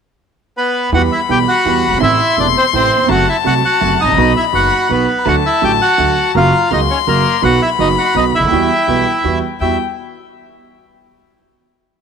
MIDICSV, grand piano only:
0, 0, Header, 1, 2, 480
1, 0, Start_track
1, 0, Key_signature, 1, "minor"
1, 0, Tempo, 361664
1, 1220, Time_signature, 3, 2, 24, 8
1, 15944, End_track
2, 0, Start_track
2, 0, Title_t, "Grand piano"
2, 0, Program_c, 0, 0
2, 1230, Note_on_c, 0, 52, 70
2, 1230, Note_on_c, 0, 55, 51
2, 1231, Note_on_c, 0, 40, 60
2, 1235, Note_on_c, 0, 59, 51
2, 1235, Note_on_c, 0, 67, 63
2, 1430, Note_off_c, 0, 55, 0
2, 1431, Note_off_c, 0, 40, 0
2, 1431, Note_off_c, 0, 52, 0
2, 1433, Note_off_c, 0, 59, 0
2, 1433, Note_off_c, 0, 67, 0
2, 1713, Note_on_c, 0, 52, 36
2, 1714, Note_on_c, 0, 47, 44
2, 1717, Note_on_c, 0, 35, 44
2, 1719, Note_on_c, 0, 55, 35
2, 1719, Note_on_c, 0, 59, 37
2, 1719, Note_on_c, 0, 67, 42
2, 1911, Note_off_c, 0, 52, 0
2, 1912, Note_off_c, 0, 47, 0
2, 1913, Note_off_c, 0, 35, 0
2, 1914, Note_off_c, 0, 55, 0
2, 1914, Note_off_c, 0, 59, 0
2, 1914, Note_off_c, 0, 67, 0
2, 2194, Note_on_c, 0, 52, 44
2, 2198, Note_on_c, 0, 40, 47
2, 2199, Note_on_c, 0, 55, 38
2, 2200, Note_on_c, 0, 59, 32
2, 2204, Note_on_c, 0, 67, 42
2, 2394, Note_off_c, 0, 40, 0
2, 2395, Note_off_c, 0, 52, 0
2, 2395, Note_off_c, 0, 55, 0
2, 2395, Note_off_c, 0, 59, 0
2, 2397, Note_off_c, 0, 67, 0
2, 2498, Note_on_c, 0, 30, 43
2, 2548, Note_on_c, 0, 31, 47
2, 2553, Note_off_c, 0, 30, 0
2, 2607, Note_off_c, 0, 31, 0
2, 2607, Note_on_c, 0, 32, 53
2, 2659, Note_on_c, 0, 45, 64
2, 2659, Note_on_c, 0, 52, 53
2, 2660, Note_on_c, 0, 48, 62
2, 2660, Note_on_c, 0, 57, 53
2, 2661, Note_on_c, 0, 33, 70
2, 2665, Note_on_c, 0, 64, 63
2, 2667, Note_off_c, 0, 32, 0
2, 2864, Note_off_c, 0, 45, 0
2, 2864, Note_off_c, 0, 48, 0
2, 2864, Note_off_c, 0, 52, 0
2, 2864, Note_off_c, 0, 57, 0
2, 2865, Note_off_c, 0, 33, 0
2, 2867, Note_off_c, 0, 64, 0
2, 3146, Note_on_c, 0, 28, 48
2, 3147, Note_on_c, 0, 48, 40
2, 3149, Note_on_c, 0, 52, 37
2, 3150, Note_on_c, 0, 40, 42
2, 3152, Note_on_c, 0, 57, 37
2, 3152, Note_on_c, 0, 64, 45
2, 3344, Note_off_c, 0, 28, 0
2, 3344, Note_off_c, 0, 48, 0
2, 3345, Note_off_c, 0, 52, 0
2, 3346, Note_off_c, 0, 40, 0
2, 3347, Note_off_c, 0, 57, 0
2, 3347, Note_off_c, 0, 64, 0
2, 3624, Note_on_c, 0, 48, 41
2, 3626, Note_on_c, 0, 33, 42
2, 3628, Note_on_c, 0, 52, 36
2, 3628, Note_on_c, 0, 57, 36
2, 3629, Note_on_c, 0, 45, 48
2, 3631, Note_on_c, 0, 64, 43
2, 3821, Note_off_c, 0, 48, 0
2, 3822, Note_off_c, 0, 33, 0
2, 3823, Note_off_c, 0, 52, 0
2, 3823, Note_off_c, 0, 57, 0
2, 3824, Note_off_c, 0, 45, 0
2, 3825, Note_off_c, 0, 64, 0
2, 3914, Note_on_c, 0, 39, 44
2, 3974, Note_off_c, 0, 39, 0
2, 3981, Note_on_c, 0, 40, 49
2, 4034, Note_on_c, 0, 41, 56
2, 4038, Note_off_c, 0, 40, 0
2, 4088, Note_on_c, 0, 48, 61
2, 4090, Note_on_c, 0, 54, 65
2, 4091, Note_on_c, 0, 42, 64
2, 4091, Note_on_c, 0, 57, 58
2, 4094, Note_off_c, 0, 41, 0
2, 4095, Note_on_c, 0, 66, 61
2, 4291, Note_off_c, 0, 48, 0
2, 4292, Note_off_c, 0, 42, 0
2, 4292, Note_off_c, 0, 57, 0
2, 4293, Note_off_c, 0, 54, 0
2, 4294, Note_off_c, 0, 66, 0
2, 4567, Note_on_c, 0, 48, 48
2, 4569, Note_on_c, 0, 36, 47
2, 4570, Note_on_c, 0, 54, 37
2, 4572, Note_on_c, 0, 57, 37
2, 4574, Note_on_c, 0, 66, 49
2, 4770, Note_off_c, 0, 36, 0
2, 4771, Note_off_c, 0, 54, 0
2, 4772, Note_off_c, 0, 48, 0
2, 4772, Note_off_c, 0, 57, 0
2, 4773, Note_off_c, 0, 66, 0
2, 5047, Note_on_c, 0, 48, 41
2, 5051, Note_on_c, 0, 54, 48
2, 5055, Note_on_c, 0, 57, 40
2, 5056, Note_on_c, 0, 42, 50
2, 5056, Note_on_c, 0, 66, 45
2, 5248, Note_off_c, 0, 48, 0
2, 5252, Note_off_c, 0, 42, 0
2, 5252, Note_off_c, 0, 57, 0
2, 5253, Note_off_c, 0, 54, 0
2, 5253, Note_off_c, 0, 66, 0
2, 5352, Note_on_c, 0, 32, 43
2, 5409, Note_off_c, 0, 32, 0
2, 5414, Note_on_c, 0, 33, 47
2, 5469, Note_on_c, 0, 34, 56
2, 5470, Note_off_c, 0, 33, 0
2, 5527, Note_off_c, 0, 34, 0
2, 5532, Note_on_c, 0, 51, 52
2, 5533, Note_on_c, 0, 47, 64
2, 5535, Note_on_c, 0, 54, 56
2, 5538, Note_on_c, 0, 35, 66
2, 5538, Note_on_c, 0, 59, 57
2, 5539, Note_on_c, 0, 66, 68
2, 5729, Note_off_c, 0, 51, 0
2, 5730, Note_off_c, 0, 47, 0
2, 5731, Note_off_c, 0, 54, 0
2, 5732, Note_off_c, 0, 35, 0
2, 5732, Note_off_c, 0, 59, 0
2, 5733, Note_off_c, 0, 66, 0
2, 6003, Note_on_c, 0, 51, 38
2, 6004, Note_on_c, 0, 30, 46
2, 6007, Note_on_c, 0, 54, 38
2, 6008, Note_on_c, 0, 42, 48
2, 6010, Note_on_c, 0, 59, 36
2, 6012, Note_on_c, 0, 66, 45
2, 6207, Note_off_c, 0, 30, 0
2, 6207, Note_off_c, 0, 51, 0
2, 6209, Note_off_c, 0, 42, 0
2, 6209, Note_off_c, 0, 54, 0
2, 6210, Note_off_c, 0, 59, 0
2, 6212, Note_off_c, 0, 66, 0
2, 6488, Note_on_c, 0, 51, 36
2, 6491, Note_on_c, 0, 47, 45
2, 6491, Note_on_c, 0, 54, 36
2, 6492, Note_on_c, 0, 35, 48
2, 6493, Note_on_c, 0, 59, 35
2, 6494, Note_on_c, 0, 66, 46
2, 6693, Note_off_c, 0, 51, 0
2, 6694, Note_off_c, 0, 47, 0
2, 6694, Note_off_c, 0, 54, 0
2, 6695, Note_off_c, 0, 35, 0
2, 6695, Note_off_c, 0, 59, 0
2, 6696, Note_off_c, 0, 66, 0
2, 6973, Note_on_c, 0, 50, 63
2, 6975, Note_on_c, 0, 54, 45
2, 6977, Note_on_c, 0, 57, 47
2, 6977, Note_on_c, 0, 66, 62
2, 6978, Note_on_c, 0, 38, 68
2, 7180, Note_off_c, 0, 50, 0
2, 7180, Note_off_c, 0, 54, 0
2, 7180, Note_off_c, 0, 66, 0
2, 7181, Note_off_c, 0, 38, 0
2, 7181, Note_off_c, 0, 57, 0
2, 7450, Note_on_c, 0, 50, 35
2, 7456, Note_on_c, 0, 54, 32
2, 7456, Note_on_c, 0, 57, 37
2, 7459, Note_on_c, 0, 33, 42
2, 7459, Note_on_c, 0, 45, 46
2, 7464, Note_on_c, 0, 66, 44
2, 7660, Note_off_c, 0, 50, 0
2, 7663, Note_off_c, 0, 54, 0
2, 7663, Note_off_c, 0, 57, 0
2, 7664, Note_off_c, 0, 33, 0
2, 7665, Note_off_c, 0, 45, 0
2, 7667, Note_off_c, 0, 66, 0
2, 7934, Note_on_c, 0, 50, 47
2, 7936, Note_on_c, 0, 38, 43
2, 7936, Note_on_c, 0, 54, 36
2, 7939, Note_on_c, 0, 57, 37
2, 7943, Note_on_c, 0, 66, 40
2, 8142, Note_off_c, 0, 38, 0
2, 8142, Note_off_c, 0, 54, 0
2, 8143, Note_off_c, 0, 50, 0
2, 8144, Note_off_c, 0, 57, 0
2, 8146, Note_off_c, 0, 66, 0
2, 8426, Note_on_c, 0, 49, 58
2, 8430, Note_on_c, 0, 42, 67
2, 8430, Note_on_c, 0, 54, 68
2, 8430, Note_on_c, 0, 66, 61
2, 8432, Note_on_c, 0, 58, 48
2, 8627, Note_off_c, 0, 49, 0
2, 8630, Note_off_c, 0, 42, 0
2, 8630, Note_off_c, 0, 54, 0
2, 8630, Note_off_c, 0, 58, 0
2, 8630, Note_off_c, 0, 66, 0
2, 8904, Note_on_c, 0, 49, 51
2, 8907, Note_on_c, 0, 37, 50
2, 8908, Note_on_c, 0, 66, 43
2, 8909, Note_on_c, 0, 54, 36
2, 8909, Note_on_c, 0, 58, 36
2, 9104, Note_off_c, 0, 49, 0
2, 9105, Note_off_c, 0, 37, 0
2, 9106, Note_off_c, 0, 54, 0
2, 9106, Note_off_c, 0, 58, 0
2, 9106, Note_off_c, 0, 66, 0
2, 9382, Note_on_c, 0, 49, 41
2, 9384, Note_on_c, 0, 42, 48
2, 9386, Note_on_c, 0, 54, 50
2, 9388, Note_on_c, 0, 58, 37
2, 9391, Note_on_c, 0, 66, 50
2, 9581, Note_off_c, 0, 49, 0
2, 9583, Note_off_c, 0, 42, 0
2, 9584, Note_off_c, 0, 54, 0
2, 9584, Note_off_c, 0, 58, 0
2, 9586, Note_off_c, 0, 66, 0
2, 9851, Note_on_c, 0, 51, 56
2, 9852, Note_on_c, 0, 35, 71
2, 9852, Note_on_c, 0, 54, 54
2, 9855, Note_on_c, 0, 47, 78
2, 9856, Note_on_c, 0, 59, 56
2, 9860, Note_on_c, 0, 66, 70
2, 10054, Note_off_c, 0, 51, 0
2, 10055, Note_off_c, 0, 35, 0
2, 10055, Note_off_c, 0, 54, 0
2, 10056, Note_off_c, 0, 47, 0
2, 10057, Note_off_c, 0, 59, 0
2, 10059, Note_off_c, 0, 66, 0
2, 10330, Note_on_c, 0, 51, 41
2, 10332, Note_on_c, 0, 59, 38
2, 10333, Note_on_c, 0, 54, 42
2, 10336, Note_on_c, 0, 30, 51
2, 10336, Note_on_c, 0, 42, 47
2, 10336, Note_on_c, 0, 66, 50
2, 10533, Note_off_c, 0, 51, 0
2, 10534, Note_off_c, 0, 59, 0
2, 10535, Note_off_c, 0, 54, 0
2, 10536, Note_off_c, 0, 30, 0
2, 10536, Note_off_c, 0, 42, 0
2, 10536, Note_off_c, 0, 66, 0
2, 10808, Note_on_c, 0, 51, 40
2, 10810, Note_on_c, 0, 54, 37
2, 10813, Note_on_c, 0, 59, 37
2, 10814, Note_on_c, 0, 35, 46
2, 10817, Note_on_c, 0, 47, 49
2, 10817, Note_on_c, 0, 66, 47
2, 11012, Note_off_c, 0, 51, 0
2, 11013, Note_off_c, 0, 54, 0
2, 11015, Note_off_c, 0, 35, 0
2, 11015, Note_off_c, 0, 59, 0
2, 11017, Note_off_c, 0, 47, 0
2, 11017, Note_off_c, 0, 66, 0
2, 11117, Note_on_c, 0, 37, 44
2, 11175, Note_off_c, 0, 37, 0
2, 11184, Note_on_c, 0, 38, 48
2, 11238, Note_off_c, 0, 38, 0
2, 11253, Note_on_c, 0, 39, 55
2, 11303, Note_off_c, 0, 39, 0
2, 11308, Note_on_c, 0, 52, 72
2, 11310, Note_on_c, 0, 40, 66
2, 11311, Note_on_c, 0, 59, 51
2, 11313, Note_on_c, 0, 55, 56
2, 11316, Note_on_c, 0, 66, 64
2, 11502, Note_off_c, 0, 40, 0
2, 11502, Note_off_c, 0, 52, 0
2, 11503, Note_off_c, 0, 55, 0
2, 11503, Note_off_c, 0, 59, 0
2, 11505, Note_off_c, 0, 66, 0
2, 11777, Note_on_c, 0, 52, 39
2, 11781, Note_on_c, 0, 55, 37
2, 11782, Note_on_c, 0, 47, 46
2, 11782, Note_on_c, 0, 59, 36
2, 11785, Note_on_c, 0, 35, 49
2, 11787, Note_on_c, 0, 66, 43
2, 11977, Note_off_c, 0, 52, 0
2, 11978, Note_off_c, 0, 55, 0
2, 11979, Note_off_c, 0, 47, 0
2, 11979, Note_off_c, 0, 59, 0
2, 11980, Note_off_c, 0, 35, 0
2, 11981, Note_off_c, 0, 66, 0
2, 12262, Note_on_c, 0, 52, 48
2, 12266, Note_on_c, 0, 40, 43
2, 12268, Note_on_c, 0, 55, 34
2, 12270, Note_on_c, 0, 59, 36
2, 12272, Note_on_c, 0, 66, 44
2, 12464, Note_off_c, 0, 52, 0
2, 12465, Note_off_c, 0, 40, 0
2, 12466, Note_off_c, 0, 55, 0
2, 12467, Note_off_c, 0, 59, 0
2, 12468, Note_off_c, 0, 66, 0
2, 12763, Note_on_c, 0, 66, 44
2, 12764, Note_on_c, 0, 64, 39
2, 12766, Note_on_c, 0, 55, 37
2, 12767, Note_on_c, 0, 40, 41
2, 12954, Note_off_c, 0, 66, 0
2, 12955, Note_off_c, 0, 64, 0
2, 12956, Note_off_c, 0, 40, 0
2, 12956, Note_off_c, 0, 55, 0
2, 15944, End_track
0, 0, End_of_file